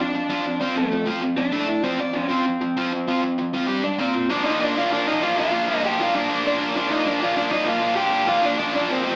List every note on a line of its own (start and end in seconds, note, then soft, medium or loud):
0.00 0.13 F3 medium
0.00 0.13 C4 medium
0.00 0.58 D4 loud
0.00 0.57 D5 medium
0.14 0.28 F3 medium
0.14 0.29 C4 medium
0.29 0.44 F3 loud
0.29 0.44 C4 loud
0.29 0.45 F4 loud
0.45 0.59 F3 medium
0.45 0.59 C4 medium
0.60 0.74 F3 medium
0.60 0.77 C4 medium
0.60 0.75 C4 loud
0.60 0.76 F4 loud
0.60 0.75 C5 medium
0.75 0.90 F3 medium
0.75 1.06 A3 medium
0.75 0.90 C4 medium
0.75 1.05 A4 medium
0.92 1.04 F3 medium
0.92 1.05 C4 medium
1.05 1.21 F3 medium
1.05 1.20 C4 loud
1.05 1.21 F4 loud
1.22 1.35 F3 medium
1.22 1.36 C4 medium
1.36 1.51 F3 medium
1.36 1.51 C4 medium
1.36 1.85 D4 loud
1.36 1.81 D5 medium
1.52 1.67 A3 loud
1.52 1.67 E4 loud
1.52 1.67 A4 loud
1.68 1.82 A3 medium
1.68 1.82 E4 medium
1.83 1.98 F3 medium
1.83 1.99 C4 loud
1.83 1.98 C4 loud
1.83 1.99 F4 loud
1.83 1.98 C5 medium
1.99 2.12 F3 medium
1.99 2.13 C4 medium
1.99 2.15 D4 loud
1.99 2.14 D5 medium
2.13 2.28 F3 medium
2.13 2.28 C4 loud
2.13 3.89 C4 medium
2.13 3.80 C5 medium
2.29 2.44 F3 medium
2.29 2.44 C4 loud
2.29 2.45 F4 loud
2.45 2.59 F3 medium
2.45 2.59 C4 medium
2.61 2.75 F3 medium
2.61 2.75 C4 medium
2.77 2.91 F3 medium
2.77 2.91 C4 loud
2.77 2.91 F4 loud
2.92 3.06 F3 medium
2.92 3.06 C4 medium
3.07 3.21 F3 medium
3.07 3.22 C4 medium
3.07 3.22 F4 loud
3.23 3.36 F3 medium
3.23 3.36 C4 medium
3.38 3.51 F3 medium
3.38 3.52 C4 medium
3.53 3.67 F3 medium
3.53 3.68 C4 medium
3.53 3.67 F4 loud
3.67 3.82 G3 medium
3.67 3.82 D4 loud
3.67 3.83 G4 medium
3.83 3.97 G3 medium
3.83 3.99 D4 medium
3.83 3.97 D4 medium
3.83 3.98 D5 medium
3.98 4.13 A#3 loud
3.98 4.30 C4 medium
3.98 4.13 F4 loud
3.98 4.14 A#4 loud
3.98 4.28 C5 medium
4.14 4.28 A#3 medium
4.14 4.28 F4 medium
4.30 4.45 A#2 loud
4.30 4.45 F3 loud
4.30 4.44 A#3 loud
4.30 4.44 D4 medium
4.30 4.44 D4 loud
4.30 4.45 D5 medium
4.44 4.59 A#2 medium
4.44 4.60 F3 medium
4.44 4.60 A#3 medium
4.44 4.61 D4 loud
4.44 4.60 D#4 medium
4.44 4.64 D#5 medium
4.59 4.76 A#2 medium
4.59 4.76 F3 loud
4.59 4.75 A#3 loud
4.59 4.75 D4 loud
4.59 4.76 D4 medium
4.64 4.78 D5 medium
4.75 4.91 A#2 medium
4.75 4.91 F3 medium
4.75 4.91 A#3 medium
4.75 4.92 D4 loud
4.75 4.91 F4 medium
4.75 4.93 F5 medium
4.91 5.08 A#2 loud
4.91 5.07 F3 loud
4.91 5.07 A#3 loud
4.91 5.06 D4 medium
4.91 5.06 D4 loud
4.91 5.08 D5 medium
5.06 5.21 A#2 medium
5.06 5.21 F3 medium
5.06 5.22 A#3 medium
5.06 5.22 D4 loud
5.06 5.21 D#4 medium
5.06 5.23 D#5 medium
5.21 5.37 A#2 loud
5.21 5.36 F3 loud
5.21 5.36 A#3 loud
5.21 5.35 D4 loud
5.21 5.36 F4 medium
5.21 5.38 F5 medium
5.36 5.51 A#2 medium
5.36 5.52 F3 medium
5.36 5.52 A#3 medium
5.36 5.53 D4 medium
5.36 5.81 F4 medium
5.36 5.85 F5 loud
5.51 5.70 A#2 loud
5.51 5.69 F3 loud
5.51 5.68 A#3 loud
5.51 5.68 D4 loud
5.68 5.83 A#2 medium
5.68 5.83 F3 medium
5.68 5.84 A#3 medium
5.68 5.84 D4 loud
5.83 6.00 A#2 medium
5.83 5.99 F3 loud
5.83 5.99 A#3 loud
5.83 5.98 D4 loud
5.83 5.98 G4 medium
5.83 6.00 G5 loud
5.98 6.14 A#2 medium
5.98 6.15 F3 medium
5.98 6.15 A#3 medium
5.98 6.16 D4 loud
5.98 6.13 F4 medium
6.02 6.16 F5 loud
6.14 6.30 A#2 loud
6.14 6.30 F3 loud
6.14 6.29 A#3 loud
6.14 6.43 D4 medium
6.14 6.29 D4 loud
6.14 6.46 D5 loud
6.29 6.44 A#2 medium
6.29 6.45 F3 medium
6.29 6.46 A#3 medium
6.29 6.46 D4 loud
6.45 6.60 A#2 loud
6.45 6.60 F3 loud
6.45 6.60 A#3 loud
6.45 6.67 D4 medium
6.45 6.59 D4 loud
6.45 6.67 D5 medium
6.59 6.75 A#2 medium
6.59 6.75 F3 medium
6.59 6.76 A#3 medium
6.59 6.77 D4 loud
6.75 6.92 A#2 loud
6.75 6.91 F3 loud
6.75 6.91 A#3 loud
6.75 6.89 D4 medium
6.75 6.90 D4 loud
6.75 6.92 D5 loud
6.90 7.04 A#2 medium
6.90 7.06 F3 medium
6.90 7.06 A#3 medium
6.90 7.06 D4 loud
6.90 7.04 D#4 medium
6.90 7.08 D#5 loud
7.05 7.21 A#2 medium
7.05 7.21 F3 loud
7.05 7.20 A#3 loud
7.05 7.20 D4 medium
7.05 7.19 D4 loud
7.05 7.23 D5 medium
7.20 7.33 A#2 medium
7.20 7.35 F3 medium
7.20 7.35 A#3 loud
7.20 7.35 D4 loud
7.20 7.36 F4 medium
7.20 7.38 F5 medium
7.34 7.50 A#2 loud
7.34 7.51 F3 loud
7.34 7.50 A#3 loud
7.34 7.49 D4 loud
7.34 7.51 D4 medium
7.38 7.52 D5 medium
7.50 7.64 A#2 medium
7.50 7.65 F3 medium
7.50 7.65 A#3 loud
7.50 7.65 D4 loud
7.50 7.65 D#4 medium
7.50 7.68 D#5 medium
7.65 7.81 A#2 loud
7.65 7.82 F3 loud
7.65 7.80 A#3 loud
7.65 7.79 D4 loud
7.65 7.95 F4 medium
7.65 7.97 F5 medium
7.80 7.94 A#2 medium
7.80 7.96 F3 medium
7.80 7.95 A#3 loud
7.80 7.96 D4 loud
7.96 8.12 A#2 medium
7.96 8.12 F3 loud
7.96 8.11 A#3 loud
7.96 8.10 D4 loud
7.96 8.25 G4 medium
7.96 8.28 G5 loud
8.11 8.25 A#2 medium
8.11 8.27 F3 medium
8.11 8.27 A#3 medium
8.11 8.27 D4 loud
8.27 8.42 A#2 loud
8.27 8.42 F3 loud
8.27 8.41 A#3 loud
8.27 8.40 D4 loud
8.27 8.42 F4 medium
8.27 8.44 F5 loud
8.41 8.56 A#2 medium
8.41 8.58 F3 medium
8.41 8.57 A#3 loud
8.41 8.58 D4 loud
8.41 8.58 D4 medium
8.46 8.59 D5 loud
8.57 8.74 A#2 loud
8.57 8.74 F3 medium
8.57 8.73 A#3 loud
8.57 8.72 D4 loud
8.57 8.73 D4 medium
8.57 8.75 D5 loud
8.73 8.87 A#2 medium
8.73 8.88 F3 medium
8.73 8.88 A#3 medium
8.73 8.89 D4 loud
8.73 8.88 D4 medium
8.73 8.92 D5 loud
8.88 9.03 A#2 loud
8.88 9.05 F3 loud
8.88 9.04 A#3 loud
8.88 9.11 C4 medium
8.88 9.04 D4 loud
8.88 9.13 C5 medium
9.04 9.16 F2 loud
9.04 9.16 C3 loud
9.04 9.16 F3 loud
9.04 9.16 A3 loud
9.04 9.16 C4 loud